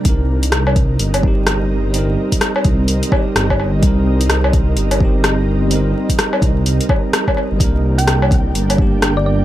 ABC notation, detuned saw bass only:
X:1
M:4/4
L:1/16
Q:"Swing 16ths" 1/4=127
K:Cm
V:1 name="Detuned saw bass" clef=bass
C,,6 C,,2 G,,,2 G,,,6- | G,,,2 z4 C,,2 C,, z3 G,,,2 G,,,2 | C,,6 C,,2 G,,,2 G,,,6- | G,,,2 z4 C,,2 C,, z6 G,,, |
C,,6 C,,2 G,,,2 G,,,6 |]